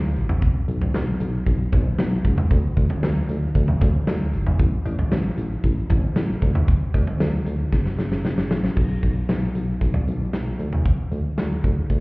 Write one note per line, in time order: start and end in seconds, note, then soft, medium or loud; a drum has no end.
0.00 0.18 D2 medium
0.16 0.44 A1 loud
0.16 closed hi-hat medium
0.29 mid tom loud
0.42 0.60 B1 loud
0.42 kick loud
0.42 closed hi-hat medium
0.68 0.86 B1 loud
0.68 closed hi-hat medium
0.81 mid tom medium
0.94 1.13 B1 loud
0.94 snare loud
0.94 closed hi-hat medium
1.20 1.39 B1 loud
1.20 closed hi-hat medium
1.46 1.65 B1 loud
1.46 kick medium
1.46 closed hi-hat medium
1.72 1.91 B1 loud
1.72 kick loud
1.72 closed hi-hat medium
1.72 mid tom medium
1.98 2.17 B1 loud
1.98 snare loud
1.98 closed hi-hat medium
2.25 2.43 C#2 loud
2.25 kick medium
2.25 closed hi-hat medium
2.38 mid tom medium
2.51 2.69 D2 loud
2.51 kick loud
2.51 closed hi-hat medium
2.77 2.95 D2 medium
2.77 kick medium
2.77 closed hi-hat medium
2.90 mid tom medium
3.03 3.21 D2 loud
3.03 snare loud
3.03 closed hi-hat medium
3.29 3.47 D2 loud
3.29 closed hi-hat medium
3.55 3.73 D2 loud
3.55 kick medium
3.55 closed hi-hat medium
3.68 mid tom medium
3.81 4.00 D2 loud
3.81 kick loud
3.81 closed hi-hat medium
3.81 mid tom medium
4.07 4.35 D2 loud
4.07 snare loud
4.07 closed hi-hat medium
4.33 4.52 G1 loud
4.33 closed hi-hat medium
4.47 mid tom medium
4.59 4.78 A1 loud
4.59 kick loud
4.59 closed hi-hat medium
4.86 5.04 A1 loud
4.86 closed hi-hat medium
4.86 cowbell medium
4.99 mid tom medium
5.12 5.30 A1 loud
5.12 snare loud
5.12 closed hi-hat medium
5.38 5.56 A1 medium
5.38 closed hi-hat medium
5.64 5.82 A1 loud
5.64 kick medium
5.64 closed hi-hat medium
5.90 6.08 A1 medium
5.90 kick loud
5.90 closed hi-hat medium
5.90 mid tom medium
6.16 6.34 A1 loud
6.16 snare loud
6.16 closed hi-hat medium
6.42 6.79 D2 loud
6.42 kick medium
6.42 closed hi-hat medium
6.55 mid tom medium
6.68 kick loud
6.68 closed hi-hat medium
6.94 7.13 D2 medium
6.94 kick loud
6.94 closed hi-hat medium
6.94 cowbell medium
7.07 mid tom medium
7.20 7.39 D2 loud
7.20 snare loud
7.20 closed hi-hat medium
7.46 7.65 D2 medium
7.46 closed hi-hat medium
7.73 7.91 F#1 loud
7.73 kick medium
7.73 snare medium
7.86 snare medium
7.99 8.17 F#1 loud
7.99 snare medium
8.12 snare medium
8.25 8.43 F#1 loud
8.25 snare medium
8.38 snare medium
8.51 8.69 A1 medium
8.51 snare loud
8.64 snare medium
8.77 8.95 B1 loud
8.77 kick loud
8.77 crash medium
9.03 9.21 B1 medium
9.03 kick medium
9.03 closed hi-hat medium
9.29 9.47 B1 loud
9.29 snare loud
9.29 closed hi-hat medium
9.55 9.73 B1 medium
9.55 closed hi-hat medium
9.81 10.00 B1 loud
9.81 kick medium
9.81 closed hi-hat medium
9.94 mid tom loud
10.07 10.26 B1 medium
10.07 closed hi-hat medium
10.33 10.52 B1 medium
10.33 snare loud
10.33 closed hi-hat medium
10.59 10.96 D2 loud
10.59 closed hi-hat medium
10.73 mid tom medium
10.86 kick loud
10.86 closed hi-hat medium
11.12 11.30 D2 medium
11.12 closed hi-hat medium
11.38 11.56 D2 loud
11.38 snare loud
11.38 closed hi-hat medium
11.64 11.82 D2 loud
11.64 kick medium
11.64 closed hi-hat medium
11.90 12.00 D2 loud
11.90 kick medium
11.90 closed hi-hat medium